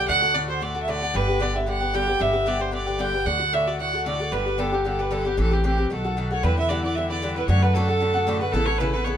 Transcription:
0.08 upright bass D2, bouzouki A2 D3 A3 F#4, fiddle F#5
0.22 bouzouki D3 A3 F#4
0.34 bouzouki A2 D3 A3 F#4, fiddle D5
0.48 bouzouki D3 A3 F#4, fiddle C5
0.61 bouzouki A2 D3 A3 F#4, fiddle D5
0.75 bouzouki D3 A3 F#4
0.83 fiddle E5
0.88 bouzouki A2 D3 A3 F#4, fiddle D5
1.01 bouzouki D3 A3 F#4
1.14 upright bass G1, bouzouki G2 D3 B3 G4, fiddle B4
1.28 bouzouki D3 B3 G4
1.40 bouzouki G2 D3 B3 G4, fiddle D5
1.54 bouzouki D3 B3 G4, fiddle E5
1.66 bouzouki G2 D3 B3 G4, fiddle F#5
1.81 bouzouki D3 B3 G4
1.94 bouzouki G2 D3 B3 G4, fiddle G5
2.08 bouzouki D3 B3 G4
2.19 upright bass G1, bouzouki G2 D3 B3 G4, fiddle E5
2.33 bouzouki D3 B3 G4
2.46 bouzouki G2 D3 B3 G4, fiddle D5
2.60 bouzouki D3 B3 G4, fiddle C5
2.71 bouzouki G2 D3 B3 G4, fiddle D5
2.86 bouzouki D3 B3 G4
2.99 bouzouki G2 D3 B3 G4, fiddle G5
3.14 bouzouki D3 B3 G4
3.26 upright bass D2, bouzouki A2 D3 A3 F#4, fiddle F#5
3.39 bouzouki D3 A3 F#4
3.53 bouzouki A2 D3 A3 F#4, fiddle E5
3.67 bouzouki D3 A3 F#4, fiddle D5
3.79 bouzouki A2 D3 A3 F#4, fiddle F#5
3.93 bouzouki D3 A3 F#4
4.06 bouzouki A2 D3 A3 F#4, fiddle D5
4.20 bouzouki D3 A3 F#4
4.32 upright bass G1, bouzouki G2 D3 B3 G4, fiddle B4
4.46 bouzouki D3 B3 G4
4.58 bouzouki G2 D3 B3 G4, fiddle A4
4.72 bouzouki D3 B3 G4, fiddle G4
4.85 bouzouki G2 D3 B3 G4, fiddle A4
4.99 bouzouki D3 B3 G4, fiddle B4
5.11 bouzouki G2 D3 B3 G4, fiddle A4
5.22 bouzouki G4, fiddle A4
5.26 bouzouki D3 B3, fiddle G4
5.37 upright bass A1, bouzouki A2 E3 C4 G4, fiddle A4
5.51 bouzouki E3 C4 G4, fiddle G4
5.64 bouzouki A2 E3 C4 G4, fiddle G4
5.78 bouzouki E3 C4 G4
5.90 upright bass B1, bouzouki B2 D#3 A3 F#4, fiddle A4
6.04 bouzouki D#3 A3 F#4
6.17 bouzouki B2 D#3 A3 F#4
6.31 bouzouki D#3 A3 F#4, fiddle C#5
6.43 upright bass E2, bouzouki G2 D3 B3 E4, fiddle B4
6.57 bouzouki D3 B3 E4, fiddle E5
6.69 bouzouki G2 D3 B3 E4, fiddle D5
6.84 bouzouki D3 B3 E4, fiddle D5
6.95 bouzouki G2 D3 B3 E4, fiddle E5
7.09 bouzouki D3 B3 E4, fiddle D5
7.22 bouzouki G2 D3 B3 E4
7.36 bouzouki D3 B3 E4, fiddle B4
7.48 upright bass F#2, bouzouki A2 D3 A3 F#4, fiddle C#5
7.62 bouzouki D3 A3 F#4, fiddle B4
7.74 bouzouki A2 D3 A3 F#4, fiddle A4
7.88 bouzouki D3 A3 F#4
8.00 bouzouki A2 D3 A3 F#4
8.14 bouzouki D3 A3 F#4
8.27 bouzouki A2 D3 A3 F#4
8.41 bouzouki D3 A3 F#4, fiddle B4
8.52 upright bass A1, bouzouki C#3 B3 E4 A4, fiddle A4
8.66 bouzouki B3 E4 A4, fiddle C#5
8.78 bouzouki C#3 B3 E4 A4, fiddle B4
8.92 bouzouki B3 E4 A4, fiddle B4
9.04 bouzouki C#3 B3 E4 A4, fiddle C#5

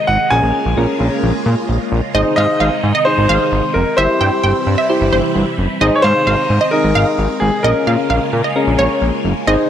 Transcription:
Already playing: string machine C3 D#3 G#3 D#4
0.07 analog synth bass G#1, grand piano F#5
0.30 analog synth bass A#1, string machine C#3 G#3 A#3 F4, synth keys C#4 G#4 A#4, grand piano G#5
0.43 analog synth bass A#1
0.66 analog synth bass A#1
0.77 analog synth bass A#1, synth keys C#4 G#4 A#4
1.00 analog synth bass A#1
1.23 analog synth bass A#1
1.46 analog synth bass A#2
1.69 analog synth bass A#1
1.92 analog synth bass A#1
2.14 analog synth bass G#1, string machine C3 D#3 G#3 D#4, synth keys D#4 G#4 C5, synth pluck D#5
2.36 analog synth bass G#2, grand piano D#5, synth pluck F5
2.60 analog synth bass G#1, synth pluck F5
2.84 analog synth bass G#2
2.95 synth pluck D#5
3.05 synth keys D#4 G#4 C5, grand piano C5
3.18 analog synth bass G#1
3.29 analog synth bass G#1, synth pluck F5
3.52 analog synth bass G#1
3.74 analog synth bass F1, grand piano A#4
3.97 analog synth bass G1, string machine C3 E3 G3 E4, synth keys E4 G4 C5, grand piano C5, synth pluck E5
4.21 analog synth bass G2, synth pluck G5
4.43 analog synth bass G1, synth pluck G5
4.67 analog synth bass G2
4.78 synth pluck E5
4.89 synth keys E4 G4 C5
5.01 analog synth bass G1
5.12 analog synth bass G1, synth pluck C5
5.35 analog synth bass G1
5.58 analog synth bass F#1
5.81 analog synth bass G#1, string machine D#3 G#3 D#4, synth keys D#4 G#4 C5, synth pluck D#5
5.95 grand piano C#5
6.02 analog synth bass G#2, grand piano C5, synth pluck F5
6.27 analog synth bass G#1, synth pluck F5
6.50 analog synth bass G#2
6.61 synth pluck D#5
6.71 synth keys D#4 G#4 D#5, grand piano A#4
6.84 analog synth bass G#1
6.95 analog synth bass G#1, synth pluck F5
7.18 analog synth bass G#1
7.40 analog synth bass G#1, grand piano G#4
7.63 analog synth bass A#1, string machine C#3 A#3 F4, synth keys C#4 G#4 A#4, grand piano A#4, synth pluck D#5
7.87 analog synth bass A#2, synth pluck F5
8.10 analog synth bass A#1, synth pluck F5
8.33 analog synth bass A#2
8.44 synth pluck D#5
8.56 synth keys C#4 G#4 A#4
8.67 analog synth bass A#1
8.79 analog synth bass A#1, synth pluck C#5
9.02 analog synth bass A#1
9.25 analog synth bass F#1
9.47 analog synth bass G#1, string machine C3 D#3 D#4, synth keys D#4 G#4 C5, synth pluck D#5

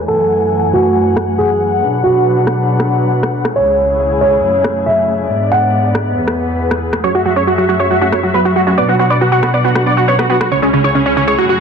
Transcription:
Already playing: string section E3 G#5
0.08 string section F#2 A3 F#5, grand piano A4
0.73 grand piano F#4
1.17 cross-stick
1.38 grand piano G#4
1.82 string section B2 F#3 D4 B4
2.03 grand piano F#4
2.47 cross-stick
2.80 cross-stick
3.23 cross-stick
3.45 cross-stick
3.56 string section C#2 C#3 G#3 E4 G#4, grand piano C#5
4.21 grand piano C#5
4.43 string section F#2 A3
4.64 cross-stick
4.86 grand piano E5
5.30 string section G#2 G#3 B3 D4 D5
5.52 grand piano F#5
5.95 cross-stick
6.17 string section E2 E3 G#4 B4
6.28 cross-stick
6.71 cross-stick
6.93 cross-stick
7.04 string section F#2 F#3 A3 E5, synth arpeggio sound F#3, supersaw synth C#5, synth pluck C#6
7.15 synth arpeggio sound F#4, supersaw synth F#4, synth pluck F#5
7.25 synth arpeggio sound F#3, supersaw synth F#4, synth pluck F#5
7.36 synth arpeggio sound C#4, supersaw synth C#5, synth pluck C#6
7.47 synth arpeggio sound F#3, supersaw synth F#4, synth pluck F#5
7.58 synth arpeggio sound F#3, supersaw synth F#4, synth pluck F#5
7.69 synth arpeggio sound F#3, supersaw synth F#4, synth pluck F#5
7.79 synth arpeggio sound F#4, supersaw synth C#5, synth pluck C#6
7.90 synth arpeggio sound F#3, supersaw synth F#4, synth pluck F#5
8.01 synth arpeggio sound C#4, supersaw synth F#4, synth pluck F#5
8.12 synth arpeggio sound F#3, supersaw synth C#5, synth pluck C#6, cross-stick
8.23 synth arpeggio sound F#3, supersaw synth F#4, synth pluck F#5
8.34 synth arpeggio sound F#3, supersaw synth B4, synth pluck B5
8.45 supersaw synth F#4, synth arpeggio sound F#4, synth pluck F#5
8.56 synth arpeggio sound F#3, supersaw synth F#4, synth pluck F#5
8.67 synth arpeggio sound C#4, supersaw synth F#4, synth pluck F#5
8.78 string section B2 D4 B4 F#5, synth arpeggio sound B3, supersaw synth D5, synth pluck D6
8.89 synth arpeggio sound B3, supersaw synth F#4, synth pluck F#5
8.99 synth arpeggio sound B3, supersaw synth F#4, synth pluck F#5
9.10 synth arpeggio sound B4, supersaw synth D5, synth pluck D6
9.21 synth arpeggio sound B3, supersaw synth F#4, synth pluck F#5
9.32 synth arpeggio sound F#4, supersaw synth F#4, synth pluck F#5
9.43 synth arpeggio sound B3, supersaw synth F#4, synth pluck F#5, cross-stick
9.54 synth arpeggio sound B3, supersaw synth D5, synth pluck D6
9.64 synth arpeggio sound B3, supersaw synth F#4, synth pluck F#5
9.75 supersaw synth F#4, synth arpeggio sound B4, synth pluck F#5, cross-stick
9.86 synth arpeggio sound B3, supersaw synth D5, synth pluck D6
9.97 synth arpeggio sound F#4, supersaw synth F#4, synth pluck F#5
10.08 synth arpeggio sound B3, supersaw synth C#5, synth pluck C#6
10.19 synth arpeggio sound B3, supersaw synth F#4, synth pluck F#5, cross-stick
10.30 synth arpeggio sound B3, supersaw synth F#4, synth pluck F#5
10.41 supersaw synth F#4, synth arpeggio sound B4, synth pluck F#5, cross-stick
10.51 string section C#2 C#3 G#3 E4 G#4, synth arpeggio sound C#3, supersaw synth C#5, synth pluck C#6
10.62 synth arpeggio sound G#3, supersaw synth C#4, synth pluck C#5
10.73 synth arpeggio sound C#3, supersaw synth C#4, synth pluck C#5
10.84 synth arpeggio sound C#3, supersaw synth C#5, synth pluck C#6
10.95 synth arpeggio sound C#3, supersaw synth C#4, synth pluck C#5
11.06 synth arpeggio sound C#4, supersaw synth C#4, synth pluck C#5
11.17 synth arpeggio sound C#3, supersaw synth C#4, synth pluck C#5
11.27 synth arpeggio sound G#3, supersaw synth C#5, synth pluck C#6
11.38 string section F#2 A3, synth arpeggio sound F#3, supersaw synth F#4, synth pluck F#5
11.49 synth arpeggio sound F#3, supersaw synth F#4, synth pluck F#5

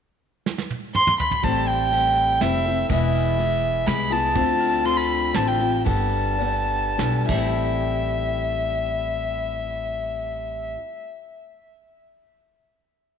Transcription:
0.46 snare
0.58 snare
0.70 high tom
0.94 fiddle C6, mid tom
1.07 mid tom
1.20 fiddle B5, floor tom
1.31 floor tom
1.43 upright bass A1, steel-string acoustic guitar A2 G3 C4 E4 A4, fiddle A5, kick, ride
1.68 fiddle G5, ride
1.91 steel-string acoustic guitar G3 C4 E4 A4, ride
2.40 upright bass F1, steel-string acoustic guitar G3 C4 E4 A4, fiddle E5, snare, ride
2.65 steel-string acoustic guitar C4 E4 A4
2.89 upright bass E1, steel-string acoustic guitar E2 E3 G#3 B3 E4 G#4, fiddle E5, kick, ride
3.14 ride
3.38 steel-string acoustic guitar G#3 B3 E4 G#4, ride
3.86 upright bass C2, steel-string acoustic guitar G#3 B3 E4 G#4, fiddle B5, snare, ride
4.10 steel-string acoustic guitar G#3 B3 E4 G#4, fiddle A5
4.35 upright bass D2, steel-string acoustic guitar D3 C4 F4 A4, kick, ride
4.60 ride
4.83 steel-string acoustic guitar D3 C4 F4 A4, fiddle C6, ride
4.97 fiddle B5
5.34 upright bass A1, steel-string acoustic guitar D3 C4 F4 A4, fiddle A5, snare, ride
5.48 fiddle G5
5.58 steel-string acoustic guitar C4 F4 A4
5.85 upright bass G1, steel-string acoustic guitar G3 B3 D4 A4, fiddle A5, kick, ride
6.13 ride
6.38 steel-string acoustic guitar G3 B3 D4 A4, ride
6.98 upright bass B1, steel-string acoustic guitar G3 B3 D4 A4, snare, ride
7.25 steel-string acoustic guitar A2, fiddle E5
7.29 upright bass A1, steel-string acoustic guitar G3 C4, kick, crash
7.35 steel-string acoustic guitar E4 A4

